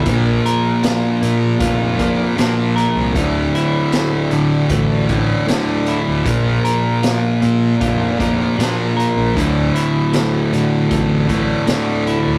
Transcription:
0.04 fingered electric bass A#1, distorted electric guitar A#2 F3 A#3, clean electric guitar A#2, kick, closed hi-hat
0.46 clean electric guitar A#4, closed hi-hat
0.83 clean electric guitar F4, snare, closed hi-hat
1.21 fingered electric bass A#2, clean electric guitar A#3, closed hi-hat
1.60 fingered electric bass F1, clean electric guitar F4, kick, closed hi-hat
1.97 distorted electric guitar A#2 F3 A#3, clean electric guitar A#3, kick, closed hi-hat
2.36 distorted electric guitar A#2 F3 A#3, fingered electric bass A#2, clean electric guitar D4, snare, closed hi-hat
2.76 clean electric guitar A#4, closed hi-hat
2.96 fingered electric bass C2
3.13 distorted electric guitar D2 A2 D3, fingered electric bass D2, clean electric guitar D2, kick, closed hi-hat
3.55 clean electric guitar E4, closed hi-hat
3.92 clean electric guitar A3, snare, closed hi-hat
4.31 clean electric guitar A2, fingered electric bass D3, closed hi-hat
4.69 fingered electric bass A1, clean electric guitar A3, kick, closed hi-hat
5.09 distorted electric guitar D2 A2 D3, clean electric guitar A2, kick, closed hi-hat
5.47 distorted electric guitar D2 A2 D3, clean electric guitar D3, fingered electric bass D3, snare, closed hi-hat
5.86 clean electric guitar E4, closed hi-hat
6.08 fingered electric bass D2
6.23 fingered electric bass A#1, distorted electric guitar A#2 F3 A#3, clean electric guitar A#2, kick, closed hi-hat
6.64 clean electric guitar A#4, closed hi-hat
7.03 clean electric guitar F4, snare, closed hi-hat
7.41 fingered electric bass A#2, clean electric guitar A#3, closed hi-hat
7.81 fingered electric bass F1, clean electric guitar F4, kick, closed hi-hat
8.19 distorted electric guitar A#2 F3 A#3, clean electric guitar A#3, kick, closed hi-hat
8.57 distorted electric guitar A#2 F3 A#3, fingered electric bass A#2, clean electric guitar D4, snare, closed hi-hat
8.97 clean electric guitar A#4, closed hi-hat
9.17 fingered electric bass A#1
9.34 clean electric guitar D2, distorted electric guitar D2 A2 D3, fingered electric bass D2, kick, closed hi-hat
9.75 clean electric guitar E4, closed hi-hat
10.12 clean electric guitar A3, snare, closed hi-hat
10.51 clean electric guitar A2, fingered electric bass D3, closed hi-hat
10.91 fingered electric bass A1, clean electric guitar A3, kick, closed hi-hat
11.28 distorted electric guitar D2 A2 D3, clean electric guitar A2, kick, closed hi-hat
11.67 distorted electric guitar D2 A2 D3, clean electric guitar D3, fingered electric bass D3, snare, closed hi-hat
12.07 clean electric guitar E4, closed hi-hat
12.27 fingered electric bass D2

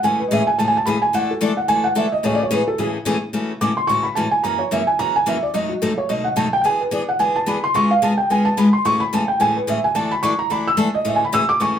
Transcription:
0.03 steel-string acoustic guitar A2 C#3 E3 A3 C#4 G#4, felt piano G#5
0.20 felt piano B4
0.28 steel-string acoustic guitar A2 C#3 E3 A3 C#4, felt piano D#5
0.32 steel-string acoustic guitar G#4, felt piano E5
0.47 felt piano G#5
0.58 steel-string acoustic guitar A2 C#3 E3 A3 C#4 G#4, felt piano A5
0.68 felt piano G#5
0.77 felt piano A5
0.85 steel-string acoustic guitar A2 C#3 E3 A3 C#4 G#4, felt piano B5
1.02 felt piano G#5
1.13 steel-string acoustic guitar E3 A3 D4 E4 A4, felt piano F#5
1.31 felt piano A4
1.41 steel-string acoustic guitar E3 A3 D4 E4 A4, felt piano D5
1.57 felt piano F#5
1.68 steel-string acoustic guitar E3 A3 D4 E4 A4, felt piano G#5
1.84 felt piano F#5
1.95 steel-string acoustic guitar E3 A3 D4 E4 A4, felt piano E5
2.12 felt piano D#5
2.23 steel-string acoustic guitar A2 C#3 E3 A3 C#4 G#4, felt piano C#5
2.35 felt piano D5
2.43 felt piano C#5
2.51 steel-string acoustic guitar A2 C#3 E3 A3 C#4 G#4, felt piano B4
2.68 felt piano A4
2.78 steel-string acoustic guitar A2 C#3 E3 A3 C#4 G#4, felt piano G#4
3.05 steel-string acoustic guitar A2 C#3 E3 A3 C#4 G#4
3.33 steel-string acoustic guitar A2 C#3 E3 A3 C#4 F#4
3.61 steel-string acoustic guitar A2 C#3 E3 A3 C#4 F#4, felt piano D6
3.77 felt piano C6
3.87 steel-string acoustic guitar A2 C#3 E3 A3 C#4 F#4, felt piano C#6
4.03 felt piano B5
4.15 steel-string acoustic guitar A2 C#3 E3 A3 C#4 F#4, felt piano A5
4.31 felt piano G#5
4.43 steel-string acoustic guitar F#2 C#3 E3 A#3 C#4 F#4, felt piano A#5
4.59 felt piano C#5
4.71 steel-string acoustic guitar F#2 C#3 E3 A#3 C#4 F#4, felt piano E5
4.87 felt piano G#5
4.99 steel-string acoustic guitar F#2 C#3 E3 A#3 C#4 F#4, felt piano A#5
5.16 felt piano G#5
5.26 steel-string acoustic guitar F#2 C#3 E3 A#3 C#4 F#4, felt piano E5
5.43 felt piano D5
5.54 steel-string acoustic guitar F#2 B2 F#3 A3 D#4 F#4, felt piano D#5
5.69 felt piano F#4
5.82 steel-string acoustic guitar F#2 B2 F#3 A3 D#4 F#4, felt piano A4
5.98 felt piano C#5
6.09 steel-string acoustic guitar F#2 B2 F#3 A3 D#4 F#4, felt piano D#5
6.24 felt piano F#5
6.36 steel-string acoustic guitar F#2 B2 F#3 A3 D#4 F#4, felt piano A5
6.53 felt piano G5
6.61 steel-string acoustic guitar E3 B3 D4 G#4, felt piano G5 G#5
6.81 felt piano B4
6.91 steel-string acoustic guitar E3 B3 D4 G#4, felt piano D5
7.09 felt piano F#5
7.19 steel-string acoustic guitar E3 B3 D4 G#4, felt piano G#5
7.36 felt piano A5
7.46 steel-string acoustic guitar E3 B3 D4 G#4, felt piano B5
7.64 felt piano C6
7.74 steel-string acoustic guitar C#3 G#3 B3 F4 G#4, felt piano C#6
7.91 felt piano F5
8.02 steel-string acoustic guitar C#3 G#3 B3 F4 G#4, felt piano A5
8.17 felt piano G5
8.30 steel-string acoustic guitar C#3 G#3 B3 F4 G#4, felt piano G#5
8.45 felt piano A5
8.57 steel-string acoustic guitar C#3 G#3 B3 F4 G#4, felt piano B5
8.73 felt piano C6
8.85 steel-string acoustic guitar A2 C#3 E3 A3 C#4 G#4, felt piano C#6
9.00 felt piano B5
9.13 steel-string acoustic guitar A2 C#3 E3 A3 C#4 G#4, felt piano A5
9.28 felt piano G5
9.40 steel-string acoustic guitar A2 C#3 E3 A3 C#4 G#4, felt piano G#5
9.57 felt piano B4
9.67 steel-string acoustic guitar A2 C#3 E3 A3 C#4 G#4, felt piano E5
9.84 felt piano G#5
9.95 steel-string acoustic guitar E3 A3 D4 E4 A4, felt piano A5
10.11 felt piano B5
10.23 steel-string acoustic guitar E3 A3 D4 E4 A4, felt piano C#6
10.39 felt piano A#5
10.50 steel-string acoustic guitar E3 A3 D4 E4 A4, felt piano B5
10.68 felt piano E6
10.77 steel-string acoustic guitar E3 A3 D4 E4 A4
10.94 felt piano D#5
11.05 steel-string acoustic guitar A2 C#3 E3 A3 C#4 G#4, felt piano E5
11.16 felt piano G#5
11.25 felt piano B5
11.32 steel-string acoustic guitar A2 C#3 E3 A3 C#4 G#4, felt piano E6
11.49 felt piano D6
11.60 steel-string acoustic guitar A2 C#3 E3 A3 C#4 G#4, felt piano C#6

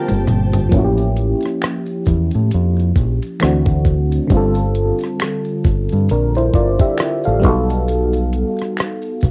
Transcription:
Already playing: fm electric piano D3 G3 A#3 C4 D4 F4 A4, horn section F3 D4 A#4, string section G4 C5 G5 A5
0.09 fingered electric bass G1, closed hi-hat, high tom, maracas
0.27 fingered electric bass G1, closed hi-hat, mid tom, maracas
0.53 closed hi-hat, floor tom, maracas
0.69 fingered electric bass A1, fm electric piano F3 A#3, kick, closed hi-hat, maracas
0.74 fm electric piano C#4 E4
0.78 fm electric piano F#4
0.84 fm electric piano G4
0.97 closed hi-hat, maracas
1.17 closed hi-hat
1.40 closed hi-hat, maracas
1.46 cross-stick
1.62 finger snap, cross-stick, closed hi-hat, maracas
1.86 maracas
2.05 fingered electric bass E2, kick, closed hi-hat, maracas
2.31 fingered electric bass A2, closed hi-hat, maracas
2.51 fingered electric bass F2, closed hi-hat, maracas
2.76 closed hi-hat, maracas
2.96 fingered electric bass A#1, kick, closed hi-hat, maracas
3.22 closed hi-hat, maracas
3.40 fingered electric bass D2, fm electric piano E3 A3 C4 D4, finger snap, cross-stick, closed hi-hat, maracas
3.44 fm electric piano F#4
3.65 kick, maracas
3.85 kick, closed hi-hat, maracas
4.11 closed hi-hat, maracas
4.27 fingered electric bass G1, fm electric piano D3 G3, kick, closed hi-hat, maracas
4.32 fm electric piano C4 F4
4.37 fm electric piano A4
4.54 closed hi-hat, maracas
4.75 closed hi-hat
4.99 closed hi-hat, maracas
5.04 cross-stick
5.20 finger snap, cross-stick, closed hi-hat, maracas
5.45 maracas
5.64 fingered electric bass G1, kick, closed hi-hat, maracas
5.89 fingered electric bass G2, closed hi-hat, maracas
6.09 fingered electric bass A#1, fm electric piano D4 A#4, closed hi-hat, maracas
6.35 fm electric piano E4 C5, closed hi-hat, maracas
6.54 fingered electric bass G1, fm electric piano F4 D5, kick, closed hi-hat, maracas
6.79 fm electric piano G4 E5, kick, closed hi-hat, maracas
6.98 finger snap, cross-stick, closed hi-hat, maracas
7.24 fingered electric bass A1, fm electric piano A4 F5, maracas
7.40 fm electric piano G3 B3, kick, maracas
7.44 fingered electric bass B1, fm electric piano D#4 F#4, closed hi-hat
7.49 fm electric piano A4
7.70 closed hi-hat, maracas
7.88 closed hi-hat, maracas
8.13 closed hi-hat, maracas
8.33 closed hi-hat
8.56 closed hi-hat, maracas
8.62 cross-stick
8.77 finger snap, cross-stick, closed hi-hat, maracas
9.02 maracas
9.21 fingered electric bass B1, kick, closed hi-hat, maracas

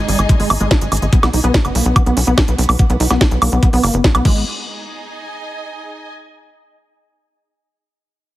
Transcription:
Already playing: string section D#4 G#4 D#5 G#5, downlifter
0.08 analog synth bass G#1, acid bass G3, open hi-hat
0.19 analog synth bass G#1, acid bass G#3, closed hi-hat, high woodblock
0.29 acid bass G#3, kick, closed hi-hat
0.40 analog synth bass G#1, acid bass G#3, open hi-hat
0.50 analog synth bass G#1, acid bass A3, open hi-hat, high woodblock
0.61 analog synth bass G#1, acid bass G#3, closed hi-hat
0.71 acid bass A3, kick, snare, closed hi-hat
0.81 analog synth bass G#1, acid bass G#3, closed hi-hat
0.92 analog synth bass G#1, acid bass G#3, open hi-hat, high woodblock
0.97 closed hi-hat
1.02 analog synth bass G#1, acid bass G#3, closed hi-hat
1.13 acid bass B3, string section B3, kick, closed hi-hat
1.23 analog synth bass B1, acid bass B3, snare, closed hi-hat, high woodblock
1.33 analog synth bass B1, acid bass D#4, open hi-hat
1.38 string section F#4
1.44 analog synth bass B1, acid bass B3, string section B4, closed hi-hat
1.54 acid bass A#3, kick, snare, closed hi-hat
1.65 analog synth bass F#1, acid bass B3, closed hi-hat, high woodblock
1.73 analog synth bass B1, acid bass A#3, string section F#5, open hi-hat
1.86 analog synth bass B1, acid bass B3, closed hi-hat
1.96 acid bass B3, kick, closed hi-hat, high woodblock
2.06 analog synth bass B1, acid bass B3, closed hi-hat
2.17 analog synth bass B1, acid bass C#4, open hi-hat
2.27 analog synth bass B1, acid bass B3, closed hi-hat
2.38 acid bass C#4, kick, snare, closed hi-hat, high woodblock
2.48 analog synth bass B1, acid bass B3, closed hi-hat
2.58 analog synth bass B1, acid bass B3, open hi-hat
2.64 closed hi-hat
2.69 analog synth bass B1, acid bass B3, open hi-hat, high woodblock
2.79 acid bass B3, kick, closed hi-hat
2.90 analog synth bass B1, acid bass B3, closed hi-hat
3.00 analog synth bass B1, acid bass D#4, open hi-hat
3.11 analog synth bass B1, acid bass B3, snare, closed hi-hat, high woodblock
3.21 acid bass A#3, kick, snare, closed hi-hat
3.31 analog synth bass B1, acid bass B3, closed hi-hat
3.42 analog synth bass B1, acid bass A#3, open hi-hat, high woodblock
3.52 analog synth bass B1, acid bass B3, closed hi-hat
3.63 acid bass B3, kick, closed hi-hat
3.73 analog synth bass B1, acid bass B3, open hi-hat
3.83 analog synth bass F#1, acid bass A#3, open hi-hat, high woodblock
3.94 analog synth bass F#1, acid bass B3, closed hi-hat
4.04 acid bass B3, kick, snare, closed hi-hat
4.15 analog synth bass B1, acid bass B3, closed hi-hat, high woodblock
4.25 analog synth bass G#1, acid bass G#3, string section D#4, kick, crash
4.31 string section G#4
4.59 string section D#5
4.65 string section G#5

